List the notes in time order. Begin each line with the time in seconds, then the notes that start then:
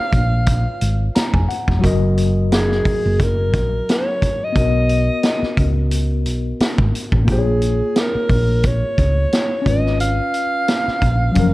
Already playing: F4 B4 C#5 F5
0.13 A#1, kick, closed hi-hat
0.46 kick, closed hi-hat
0.81 G#1, closed hi-hat
1.15 A#5, muted fingered electric bass stroke, snare, closed hi-hat
1.33 F1 G#5, kick
1.49 F#5, closed hi-hat
1.68 F1, kick, snare
1.79 F#3 F#4
1.84 F#1 A#4 D#5, kick, closed hi-hat
2.17 closed hi-hat
2.52 G#4, snare, closed hi-hat
2.71 snare
2.85 muted fingered electric bass stroke, kick, open hi-hat
3.06 F#1
3.19 A#4, kick, closed hi-hat
3.54 A#1, kick, closed hi-hat
3.89 C#5, snare, closed hi-hat
4.22 kick, closed hi-hat
4.44 D#5
4.53 B1 B3 F#4, kick, closed hi-hat
4.58 A#4 D#5
4.89 closed hi-hat
5.23 snare, closed hi-hat
5.43 muted fingered electric bass stroke, snare
5.57 C#2, kick, closed hi-hat
5.91 closed hi-hat
6.26 B1, closed hi-hat
6.60 muted fingered electric bass stroke, snare, closed hi-hat
6.78 G#1, kick
6.95 closed hi-hat
7.12 A1, kick
7.25 A#1 A#3 F4, kick, closed hi-hat
7.30 G#4 C5
7.39 C#5
7.62 closed hi-hat
7.96 snare, closed hi-hat
8.00 A#4
8.15 muted fingered electric bass stroke
8.29 A#1, kick, open hi-hat
8.63 C#5, kick, closed hi-hat
8.98 C#2, kick, closed hi-hat
9.32 snare, closed hi-hat
9.62 C#4 F4
9.66 G#1 B4 D#5, kick, closed hi-hat
9.86 snare
10.00 F5, closed hi-hat
10.34 closed hi-hat
10.68 snare, closed hi-hat
10.88 muted fingered electric bass stroke, snare
11.02 A#1, kick, closed hi-hat
11.32 F#3 C#4, closed hi-hat
11.36 F#1 F3 A#4, kick